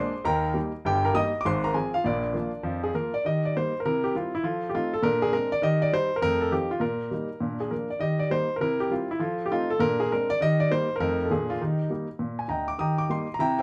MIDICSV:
0, 0, Header, 1, 2, 480
1, 0, Start_track
1, 0, Key_signature, -3, "major"
1, 0, Tempo, 298507
1, 1372, Time_signature, 4, 2, 24, 8
1, 21904, End_track
2, 0, Start_track
2, 0, Title_t, "Grand piano"
2, 0, Program_c, 0, 0
2, 0, Note_on_c, 0, 56, 50
2, 0, Note_on_c, 0, 58, 49
2, 0, Note_on_c, 0, 62, 62
2, 0, Note_on_c, 0, 72, 68
2, 0, Note_on_c, 0, 84, 96
2, 188, Note_off_c, 0, 56, 0
2, 197, Note_off_c, 0, 62, 0
2, 198, Note_off_c, 0, 58, 0
2, 382, Note_off_c, 0, 72, 0
2, 393, Note_on_c, 0, 39, 78
2, 394, Note_on_c, 0, 51, 75
2, 407, Note_on_c, 0, 82, 100
2, 415, Note_off_c, 0, 84, 0
2, 427, Note_on_c, 0, 70, 73
2, 428, Note_on_c, 0, 79, 70
2, 666, Control_c, 0, 64, 127
2, 809, Note_off_c, 0, 39, 0
2, 809, Note_off_c, 0, 51, 0
2, 864, Note_on_c, 0, 55, 43
2, 866, Note_off_c, 0, 70, 0
2, 866, Note_off_c, 0, 79, 0
2, 873, Note_on_c, 0, 58, 42
2, 882, Note_on_c, 0, 63, 41
2, 889, Note_off_c, 0, 82, 0
2, 917, Control_c, 0, 64, 0
2, 1135, Note_off_c, 0, 55, 0
2, 1141, Note_off_c, 0, 58, 0
2, 1148, Note_off_c, 0, 63, 0
2, 1365, Note_on_c, 0, 31, 70
2, 1369, Note_on_c, 0, 43, 73
2, 1389, Note_on_c, 0, 79, 94
2, 1397, Note_on_c, 0, 67, 71
2, 1638, Control_c, 0, 64, 127
2, 1668, Note_off_c, 0, 67, 0
2, 1685, Note_off_c, 0, 79, 0
2, 1686, Note_on_c, 0, 82, 82
2, 1695, Note_on_c, 0, 70, 77
2, 1774, Note_off_c, 0, 31, 0
2, 1777, Note_off_c, 0, 43, 0
2, 1833, Note_on_c, 0, 55, 47
2, 1845, Note_on_c, 0, 58, 50
2, 1846, Note_on_c, 0, 87, 109
2, 1848, Note_off_c, 0, 70, 0
2, 1850, Note_on_c, 0, 63, 52
2, 1854, Note_off_c, 0, 82, 0
2, 1864, Control_c, 0, 64, 0
2, 1868, Note_on_c, 0, 75, 87
2, 2101, Note_off_c, 0, 55, 0
2, 2109, Note_off_c, 0, 58, 0
2, 2113, Note_off_c, 0, 63, 0
2, 2224, Note_off_c, 0, 75, 0
2, 2239, Note_off_c, 0, 87, 0
2, 2263, Note_on_c, 0, 86, 87
2, 2336, Note_on_c, 0, 44, 75
2, 2338, Note_on_c, 0, 32, 71
2, 2339, Note_off_c, 0, 86, 0
2, 2348, Note_on_c, 0, 84, 102
2, 2362, Note_on_c, 0, 72, 76
2, 2584, Control_c, 0, 64, 127
2, 2630, Note_off_c, 0, 72, 0
2, 2639, Note_on_c, 0, 82, 95
2, 2643, Note_off_c, 0, 84, 0
2, 2669, Note_on_c, 0, 70, 58
2, 2739, Note_off_c, 0, 44, 0
2, 2740, Note_off_c, 0, 32, 0
2, 2785, Note_on_c, 0, 53, 42
2, 2795, Note_on_c, 0, 60, 40
2, 2804, Note_on_c, 0, 65, 42
2, 2804, Note_on_c, 0, 80, 70
2, 2809, Note_off_c, 0, 82, 0
2, 2814, Note_off_c, 0, 70, 0
2, 2823, Note_on_c, 0, 68, 55
2, 2827, Control_c, 0, 64, 0
2, 3054, Note_off_c, 0, 53, 0
2, 3061, Note_off_c, 0, 60, 0
2, 3068, Note_off_c, 0, 65, 0
2, 3099, Note_off_c, 0, 68, 0
2, 3110, Note_off_c, 0, 80, 0
2, 3121, Note_on_c, 0, 77, 85
2, 3145, Note_on_c, 0, 65, 61
2, 3287, Note_on_c, 0, 46, 66
2, 3290, Note_off_c, 0, 65, 0
2, 3290, Note_off_c, 0, 77, 0
2, 3291, Note_on_c, 0, 34, 59
2, 3310, Note_on_c, 0, 74, 80
2, 3326, Note_on_c, 0, 62, 56
2, 3332, Note_on_c, 0, 70, 52
2, 3533, Control_c, 0, 64, 127
2, 3693, Note_off_c, 0, 46, 0
2, 3695, Note_off_c, 0, 34, 0
2, 3745, Note_on_c, 0, 53, 45
2, 3757, Note_on_c, 0, 65, 51
2, 3764, Note_on_c, 0, 58, 44
2, 3789, Control_c, 0, 64, 0
2, 4013, Note_off_c, 0, 53, 0
2, 4022, Note_off_c, 0, 65, 0
2, 4027, Note_off_c, 0, 58, 0
2, 4233, Note_on_c, 0, 41, 60
2, 4234, Note_on_c, 0, 53, 68
2, 4558, Note_on_c, 0, 68, 76
2, 4644, Note_off_c, 0, 41, 0
2, 4644, Note_off_c, 0, 53, 0
2, 4677, Note_off_c, 0, 62, 0
2, 4680, Note_off_c, 0, 70, 0
2, 4725, Note_on_c, 0, 53, 36
2, 4726, Note_off_c, 0, 68, 0
2, 4733, Note_off_c, 0, 74, 0
2, 4736, Note_on_c, 0, 58, 33
2, 4742, Note_on_c, 0, 70, 75
2, 4745, Note_on_c, 0, 65, 42
2, 4987, Note_off_c, 0, 53, 0
2, 4995, Note_off_c, 0, 58, 0
2, 5002, Note_off_c, 0, 65, 0
2, 5037, Note_off_c, 0, 70, 0
2, 5048, Note_on_c, 0, 74, 76
2, 5211, Note_off_c, 0, 74, 0
2, 5220, Note_on_c, 0, 51, 56
2, 5243, Note_on_c, 0, 75, 74
2, 5247, Note_on_c, 0, 67, 38
2, 5460, Control_c, 0, 64, 127
2, 5497, Note_off_c, 0, 67, 0
2, 5527, Note_off_c, 0, 75, 0
2, 5553, Note_on_c, 0, 74, 70
2, 5619, Note_off_c, 0, 51, 0
2, 5697, Control_c, 0, 64, 0
2, 5703, Note_off_c, 0, 74, 0
2, 5721, Note_on_c, 0, 55, 35
2, 5730, Note_on_c, 0, 63, 38
2, 5732, Note_on_c, 0, 58, 44
2, 5736, Note_on_c, 0, 72, 80
2, 5973, Note_off_c, 0, 55, 0
2, 5979, Note_off_c, 0, 63, 0
2, 5981, Note_off_c, 0, 58, 0
2, 6100, Note_off_c, 0, 72, 0
2, 6112, Note_on_c, 0, 70, 66
2, 6177, Note_off_c, 0, 70, 0
2, 6197, Note_on_c, 0, 48, 69
2, 6201, Note_on_c, 0, 70, 84
2, 6226, Note_on_c, 0, 64, 38
2, 6418, Control_c, 0, 64, 127
2, 6471, Note_off_c, 0, 64, 0
2, 6485, Note_off_c, 0, 70, 0
2, 6494, Note_on_c, 0, 67, 69
2, 6588, Note_off_c, 0, 48, 0
2, 6652, Note_off_c, 0, 67, 0
2, 6656, Control_c, 0, 64, 0
2, 6671, Note_on_c, 0, 55, 33
2, 6683, Note_on_c, 0, 60, 32
2, 6687, Note_on_c, 0, 64, 34
2, 6690, Note_on_c, 0, 65, 69
2, 6925, Note_off_c, 0, 55, 0
2, 6935, Note_off_c, 0, 60, 0
2, 6937, Note_off_c, 0, 64, 0
2, 6970, Note_off_c, 0, 65, 0
2, 6990, Note_on_c, 0, 64, 73
2, 7129, Note_on_c, 0, 53, 54
2, 7140, Note_off_c, 0, 64, 0
2, 7143, Note_on_c, 0, 65, 76
2, 7166, Note_on_c, 0, 69, 36
2, 7372, Control_c, 0, 64, 127
2, 7417, Note_off_c, 0, 69, 0
2, 7523, Note_off_c, 0, 65, 0
2, 7531, Note_off_c, 0, 53, 0
2, 7549, Note_on_c, 0, 67, 65
2, 7616, Note_off_c, 0, 67, 0
2, 7617, Note_on_c, 0, 57, 42
2, 7618, Control_c, 0, 64, 0
2, 7627, Note_on_c, 0, 60, 45
2, 7635, Note_on_c, 0, 65, 88
2, 7640, Note_on_c, 0, 63, 47
2, 7876, Note_off_c, 0, 57, 0
2, 7882, Note_off_c, 0, 60, 0
2, 7892, Note_off_c, 0, 63, 0
2, 7922, Note_off_c, 0, 65, 0
2, 7936, Note_on_c, 0, 69, 81
2, 8081, Note_on_c, 0, 46, 71
2, 8093, Note_off_c, 0, 69, 0
2, 8095, Note_on_c, 0, 70, 99
2, 8122, Note_on_c, 0, 62, 56
2, 8331, Control_c, 0, 64, 127
2, 8373, Note_off_c, 0, 62, 0
2, 8392, Note_off_c, 0, 70, 0
2, 8398, Note_on_c, 0, 68, 88
2, 8487, Note_off_c, 0, 46, 0
2, 8558, Note_on_c, 0, 56, 41
2, 8559, Note_on_c, 0, 60, 41
2, 8562, Note_on_c, 0, 62, 41
2, 8564, Note_off_c, 0, 68, 0
2, 8573, Note_on_c, 0, 70, 93
2, 8579, Control_c, 0, 64, 0
2, 8822, Note_off_c, 0, 56, 0
2, 8822, Note_off_c, 0, 60, 0
2, 8824, Note_off_c, 0, 62, 0
2, 8871, Note_off_c, 0, 70, 0
2, 8878, Note_on_c, 0, 74, 94
2, 9038, Note_on_c, 0, 51, 72
2, 9044, Note_off_c, 0, 74, 0
2, 9058, Note_on_c, 0, 75, 95
2, 9069, Note_on_c, 0, 67, 47
2, 9303, Control_c, 0, 64, 127
2, 9324, Note_off_c, 0, 67, 0
2, 9354, Note_off_c, 0, 75, 0
2, 9357, Note_on_c, 0, 74, 89
2, 9445, Note_off_c, 0, 51, 0
2, 9524, Note_off_c, 0, 74, 0
2, 9532, Control_c, 0, 64, 0
2, 9532, Note_on_c, 0, 55, 50
2, 9543, Note_on_c, 0, 63, 49
2, 9544, Note_on_c, 0, 72, 97
2, 9792, Note_off_c, 0, 55, 0
2, 9800, Note_off_c, 0, 63, 0
2, 9907, Note_on_c, 0, 70, 77
2, 9923, Note_off_c, 0, 72, 0
2, 9985, Note_off_c, 0, 70, 0
2, 9994, Note_on_c, 0, 41, 69
2, 10009, Note_on_c, 0, 70, 113
2, 10030, Note_on_c, 0, 57, 51
2, 10247, Control_c, 0, 64, 127
2, 10285, Note_off_c, 0, 57, 0
2, 10309, Note_off_c, 0, 70, 0
2, 10310, Note_on_c, 0, 69, 69
2, 10403, Note_off_c, 0, 41, 0
2, 10466, Note_on_c, 0, 53, 40
2, 10478, Note_on_c, 0, 63, 35
2, 10480, Note_off_c, 0, 69, 0
2, 10480, Note_on_c, 0, 60, 36
2, 10486, Note_on_c, 0, 67, 76
2, 10501, Control_c, 0, 64, 0
2, 10734, Note_off_c, 0, 53, 0
2, 10742, Note_off_c, 0, 63, 0
2, 10743, Note_off_c, 0, 60, 0
2, 10788, Note_off_c, 0, 67, 0
2, 10791, Note_on_c, 0, 65, 77
2, 10933, Note_on_c, 0, 46, 56
2, 10948, Note_on_c, 0, 70, 78
2, 10961, Note_off_c, 0, 65, 0
2, 11218, Control_c, 0, 64, 127
2, 11352, Note_off_c, 0, 46, 0
2, 11436, Note_on_c, 0, 55, 40
2, 11437, Note_on_c, 0, 58, 36
2, 11455, Note_on_c, 0, 63, 42
2, 11456, Control_c, 0, 64, 0
2, 11701, Note_off_c, 0, 55, 0
2, 11702, Note_off_c, 0, 58, 0
2, 11714, Note_off_c, 0, 63, 0
2, 11907, Note_on_c, 0, 46, 56
2, 11942, Note_on_c, 0, 62, 37
2, 12169, Control_c, 0, 64, 127
2, 12200, Note_off_c, 0, 62, 0
2, 12220, Note_off_c, 0, 70, 0
2, 12227, Note_on_c, 0, 68, 58
2, 12320, Note_off_c, 0, 46, 0
2, 12388, Note_on_c, 0, 53, 29
2, 12392, Note_on_c, 0, 58, 31
2, 12396, Note_on_c, 0, 70, 59
2, 12399, Note_on_c, 0, 62, 30
2, 12400, Note_off_c, 0, 68, 0
2, 12423, Control_c, 0, 64, 0
2, 12655, Note_off_c, 0, 53, 0
2, 12658, Note_off_c, 0, 58, 0
2, 12663, Note_off_c, 0, 62, 0
2, 12704, Note_off_c, 0, 70, 0
2, 12709, Note_on_c, 0, 74, 66
2, 12856, Note_on_c, 0, 51, 53
2, 12873, Note_on_c, 0, 75, 82
2, 12881, Note_off_c, 0, 74, 0
2, 12891, Note_on_c, 0, 67, 43
2, 13135, Control_c, 0, 64, 127
2, 13152, Note_off_c, 0, 67, 0
2, 13176, Note_on_c, 0, 74, 74
2, 13182, Note_off_c, 0, 75, 0
2, 13275, Note_off_c, 0, 51, 0
2, 13346, Note_on_c, 0, 55, 39
2, 13355, Note_off_c, 0, 74, 0
2, 13360, Note_on_c, 0, 58, 37
2, 13366, Note_on_c, 0, 63, 44
2, 13367, Note_on_c, 0, 72, 91
2, 13381, Control_c, 0, 64, 0
2, 13614, Note_off_c, 0, 55, 0
2, 13624, Note_off_c, 0, 58, 0
2, 13629, Note_off_c, 0, 63, 0
2, 13757, Note_off_c, 0, 72, 0
2, 13768, Note_on_c, 0, 70, 68
2, 13826, Note_off_c, 0, 70, 0
2, 13839, Note_on_c, 0, 48, 68
2, 13850, Note_on_c, 0, 70, 90
2, 13870, Note_on_c, 0, 64, 45
2, 14090, Control_c, 0, 64, 127
2, 14126, Note_off_c, 0, 64, 0
2, 14152, Note_off_c, 0, 70, 0
2, 14155, Note_on_c, 0, 67, 76
2, 14249, Note_off_c, 0, 48, 0
2, 14323, Note_on_c, 0, 55, 34
2, 14326, Note_off_c, 0, 67, 0
2, 14328, Note_on_c, 0, 60, 37
2, 14334, Note_on_c, 0, 65, 61
2, 14336, Note_on_c, 0, 64, 35
2, 14347, Control_c, 0, 64, 0
2, 14587, Note_off_c, 0, 55, 0
2, 14591, Note_off_c, 0, 60, 0
2, 14596, Note_off_c, 0, 64, 0
2, 14634, Note_off_c, 0, 65, 0
2, 14648, Note_on_c, 0, 64, 71
2, 14784, Note_on_c, 0, 53, 66
2, 14798, Note_on_c, 0, 65, 73
2, 14812, Note_off_c, 0, 64, 0
2, 14812, Note_on_c, 0, 69, 40
2, 15054, Control_c, 0, 64, 127
2, 15074, Note_off_c, 0, 69, 0
2, 15194, Note_off_c, 0, 65, 0
2, 15200, Note_off_c, 0, 53, 0
2, 15206, Note_on_c, 0, 67, 72
2, 15288, Note_off_c, 0, 67, 0
2, 15293, Note_on_c, 0, 57, 39
2, 15300, Note_on_c, 0, 60, 46
2, 15304, Note_on_c, 0, 65, 88
2, 15307, Control_c, 0, 64, 0
2, 15311, Note_on_c, 0, 63, 52
2, 15554, Note_off_c, 0, 57, 0
2, 15560, Note_off_c, 0, 60, 0
2, 15568, Note_off_c, 0, 63, 0
2, 15600, Note_off_c, 0, 65, 0
2, 15603, Note_on_c, 0, 69, 86
2, 15750, Note_on_c, 0, 46, 73
2, 15764, Note_on_c, 0, 70, 104
2, 15770, Note_off_c, 0, 69, 0
2, 15784, Note_on_c, 0, 62, 52
2, 16020, Control_c, 0, 64, 127
2, 16043, Note_off_c, 0, 62, 0
2, 16071, Note_off_c, 0, 70, 0
2, 16078, Note_on_c, 0, 68, 77
2, 16165, Note_off_c, 0, 46, 0
2, 16249, Note_off_c, 0, 68, 0
2, 16260, Note_on_c, 0, 56, 42
2, 16266, Control_c, 0, 64, 0
2, 16269, Note_on_c, 0, 60, 39
2, 16275, Note_on_c, 0, 62, 44
2, 16275, Note_on_c, 0, 70, 81
2, 16520, Note_off_c, 0, 56, 0
2, 16527, Note_off_c, 0, 60, 0
2, 16531, Note_off_c, 0, 62, 0
2, 16562, Note_on_c, 0, 74, 98
2, 16567, Note_off_c, 0, 70, 0
2, 16731, Note_off_c, 0, 74, 0
2, 16734, Note_on_c, 0, 51, 70
2, 16758, Note_on_c, 0, 75, 101
2, 16763, Note_on_c, 0, 67, 48
2, 16985, Control_c, 0, 64, 127
2, 17017, Note_off_c, 0, 67, 0
2, 17045, Note_on_c, 0, 74, 88
2, 17049, Note_off_c, 0, 75, 0
2, 17140, Note_off_c, 0, 51, 0
2, 17213, Note_off_c, 0, 74, 0
2, 17217, Note_on_c, 0, 55, 47
2, 17223, Note_on_c, 0, 63, 53
2, 17224, Note_on_c, 0, 58, 54
2, 17226, Control_c, 0, 64, 0
2, 17231, Note_on_c, 0, 72, 98
2, 17479, Note_off_c, 0, 55, 0
2, 17483, Note_off_c, 0, 63, 0
2, 17484, Note_off_c, 0, 58, 0
2, 17612, Note_off_c, 0, 72, 0
2, 17619, Note_on_c, 0, 70, 81
2, 17672, Note_off_c, 0, 70, 0
2, 17687, Note_on_c, 0, 41, 75
2, 17688, Note_on_c, 0, 57, 51
2, 17690, Note_on_c, 0, 53, 39
2, 17696, Note_on_c, 0, 70, 100
2, 17707, Note_on_c, 0, 63, 43
2, 17948, Control_c, 0, 64, 127
2, 17954, Note_off_c, 0, 53, 0
2, 17966, Note_off_c, 0, 63, 0
2, 17973, Note_off_c, 0, 57, 0
2, 18086, Note_off_c, 0, 70, 0
2, 18096, Note_off_c, 0, 41, 0
2, 18097, Note_on_c, 0, 69, 59
2, 18175, Note_on_c, 0, 53, 34
2, 18176, Note_off_c, 0, 69, 0
2, 18180, Note_on_c, 0, 46, 61
2, 18185, Note_on_c, 0, 58, 31
2, 18187, Control_c, 0, 64, 0
2, 18190, Note_on_c, 0, 62, 36
2, 18190, Note_on_c, 0, 68, 73
2, 18431, Control_c, 0, 64, 127
2, 18438, Note_off_c, 0, 53, 0
2, 18445, Note_off_c, 0, 58, 0
2, 18460, Note_off_c, 0, 62, 0
2, 18486, Note_off_c, 0, 68, 0
2, 18491, Note_on_c, 0, 65, 78
2, 18584, Note_off_c, 0, 46, 0
2, 18657, Note_off_c, 0, 65, 0
2, 18661, Note_on_c, 0, 51, 58
2, 18667, Control_c, 0, 64, 0
2, 18678, Note_on_c, 0, 63, 57
2, 18687, Note_on_c, 0, 67, 36
2, 18911, Control_c, 0, 64, 127
2, 18941, Note_off_c, 0, 67, 0
2, 19065, Note_off_c, 0, 51, 0
2, 19131, Note_off_c, 0, 63, 0
2, 19135, Note_on_c, 0, 55, 37
2, 19143, Note_on_c, 0, 58, 38
2, 19149, Control_c, 0, 64, 0
2, 19155, Note_on_c, 0, 63, 45
2, 19398, Note_off_c, 0, 55, 0
2, 19404, Note_off_c, 0, 58, 0
2, 19413, Note_off_c, 0, 63, 0
2, 19605, Note_on_c, 0, 46, 51
2, 19922, Note_on_c, 0, 80, 60
2, 20016, Note_off_c, 0, 46, 0
2, 20067, Note_on_c, 0, 50, 44
2, 20078, Note_on_c, 0, 38, 45
2, 20082, Note_on_c, 0, 82, 70
2, 20094, Note_off_c, 0, 80, 0
2, 20105, Note_on_c, 0, 79, 55
2, 20111, Note_on_c, 0, 75, 49
2, 20385, Note_off_c, 0, 79, 0
2, 20388, Note_off_c, 0, 75, 0
2, 20389, Note_on_c, 0, 86, 79
2, 20394, Note_off_c, 0, 82, 0
2, 20462, Note_off_c, 0, 50, 0
2, 20468, Note_off_c, 0, 38, 0
2, 20557, Note_on_c, 0, 51, 60
2, 20568, Note_off_c, 0, 86, 0
2, 20569, Note_on_c, 0, 87, 82
2, 20585, Note_on_c, 0, 67, 34
2, 20591, Note_on_c, 0, 79, 57
2, 20594, Note_on_c, 0, 82, 63
2, 20826, Control_c, 0, 64, 127
2, 20846, Note_off_c, 0, 67, 0
2, 20868, Note_off_c, 0, 79, 0
2, 20870, Note_off_c, 0, 82, 0
2, 20878, Note_off_c, 0, 87, 0
2, 20878, Note_on_c, 0, 86, 77
2, 20973, Note_off_c, 0, 51, 0
2, 21053, Note_off_c, 0, 86, 0
2, 21054, Note_on_c, 0, 55, 39
2, 21058, Note_on_c, 0, 58, 42
2, 21074, Note_on_c, 0, 63, 46
2, 21077, Note_on_c, 0, 84, 81
2, 21078, Control_c, 0, 64, 0
2, 21319, Note_off_c, 0, 55, 0
2, 21322, Note_off_c, 0, 58, 0
2, 21334, Note_off_c, 0, 63, 0
2, 21455, Note_on_c, 0, 82, 77
2, 21460, Note_off_c, 0, 84, 0
2, 21523, Note_off_c, 0, 82, 0
2, 21532, Note_on_c, 0, 48, 69
2, 21548, Note_on_c, 0, 82, 89
2, 21553, Note_on_c, 0, 64, 48
2, 21554, Note_on_c, 0, 76, 66
2, 21561, Note_on_c, 0, 79, 71
2, 21786, Control_c, 0, 64, 127
2, 21813, Note_off_c, 0, 64, 0
2, 21825, Note_off_c, 0, 79, 0
2, 21831, Note_off_c, 0, 76, 0
2, 21849, Note_off_c, 0, 82, 0
2, 21850, Note_on_c, 0, 79, 75
2, 21904, Note_off_c, 0, 48, 0
2, 21904, Note_off_c, 0, 79, 0
2, 21904, End_track
0, 0, End_of_file